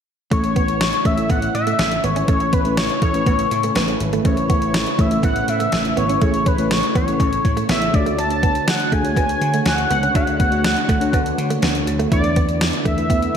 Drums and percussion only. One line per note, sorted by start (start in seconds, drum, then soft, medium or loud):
0.32 kick loud
0.32 closed hi-hat medium
0.44 closed hi-hat soft
0.56 kick medium
0.56 closed hi-hat medium
0.68 closed hi-hat soft
0.81 snare loud
0.81 closed hi-hat medium
0.93 closed hi-hat soft
1.05 kick medium
1.05 closed hi-hat medium
1.18 closed hi-hat medium
1.30 kick medium
1.30 closed hi-hat medium
1.42 closed hi-hat soft
1.55 closed hi-hat medium
1.67 closed hi-hat soft
1.79 snare loud
1.79 closed hi-hat medium
1.92 closed hi-hat soft
2.04 closed hi-hat medium
2.16 closed hi-hat soft
2.28 kick loud
2.28 closed hi-hat medium
2.40 closed hi-hat soft
2.53 kick medium
2.53 closed hi-hat medium
2.65 closed hi-hat soft
2.77 snare loud
2.77 closed hi-hat medium
2.90 closed hi-hat soft
3.02 kick medium
3.02 closed hi-hat medium
3.14 closed hi-hat medium
3.26 kick medium
3.26 closed hi-hat medium
3.39 closed hi-hat soft
3.51 closed hi-hat medium
3.63 closed hi-hat medium
3.75 snare loud
3.75 closed hi-hat medium
3.88 closed hi-hat soft
4.00 closed hi-hat medium
4.13 closed hi-hat soft
4.25 kick loud
4.25 closed hi-hat medium
4.37 closed hi-hat soft
4.50 kick medium
4.50 closed hi-hat medium
4.62 closed hi-hat soft
4.74 snare loud
4.74 closed hi-hat medium
4.86 closed hi-hat soft
4.99 kick medium
4.99 closed hi-hat medium
5.11 closed hi-hat medium
5.23 kick medium
5.23 closed hi-hat medium
5.36 closed hi-hat soft
5.48 closed hi-hat medium
5.60 closed hi-hat medium
5.72 snare loud
5.72 closed hi-hat medium
5.85 closed hi-hat soft
5.97 closed hi-hat medium
6.09 closed hi-hat soft
6.22 kick loud
6.22 closed hi-hat medium
6.34 closed hi-hat soft
6.46 kick medium
6.46 closed hi-hat medium
6.58 closed hi-hat soft
6.71 snare loud
6.71 closed hi-hat medium
6.83 closed hi-hat soft
6.95 kick medium
6.95 closed hi-hat medium
7.08 closed hi-hat soft
7.20 kick medium
7.20 closed hi-hat medium
7.33 closed hi-hat soft
7.45 kick medium
7.45 closed hi-hat medium
7.57 closed hi-hat medium
7.69 snare loud
7.69 closed hi-hat medium
7.82 closed hi-hat soft
7.94 kick loud
7.94 closed hi-hat medium
8.06 closed hi-hat soft
8.19 closed hi-hat medium
8.30 closed hi-hat soft
8.43 kick medium
8.43 closed hi-hat medium
8.55 closed hi-hat soft
8.68 snare loud
8.68 closed hi-hat medium
8.80 closed hi-hat soft
8.92 kick medium
8.92 closed hi-hat medium
9.05 closed hi-hat medium
9.16 kick medium
9.16 closed hi-hat medium
9.29 closed hi-hat soft
9.42 closed hi-hat medium
9.54 closed hi-hat soft
9.66 snare medium
9.66 closed hi-hat medium
9.78 closed hi-hat soft
9.91 closed hi-hat medium
10.03 closed hi-hat soft
10.15 kick loud
10.15 closed hi-hat medium
10.27 closed hi-hat soft
10.40 kick medium
10.40 closed hi-hat medium
10.52 closed hi-hat soft
10.64 snare loud
10.64 closed hi-hat medium
10.77 closed hi-hat soft
10.89 kick medium
10.89 closed hi-hat medium
11.01 closed hi-hat medium
11.13 kick medium
11.13 closed hi-hat medium
11.26 closed hi-hat soft
11.38 closed hi-hat medium
11.50 closed hi-hat medium
11.62 snare loud
11.62 closed hi-hat medium
11.75 closed hi-hat soft
11.87 closed hi-hat medium
12.00 closed hi-hat soft
12.12 kick loud
12.12 closed hi-hat medium
12.24 closed hi-hat soft
12.36 kick medium
12.36 closed hi-hat medium
12.49 closed hi-hat soft
12.61 snare loud
12.61 closed hi-hat medium
12.73 closed hi-hat soft
12.85 kick medium
12.85 closed hi-hat medium
12.98 closed hi-hat medium
13.10 kick medium
13.10 closed hi-hat medium
13.22 closed hi-hat soft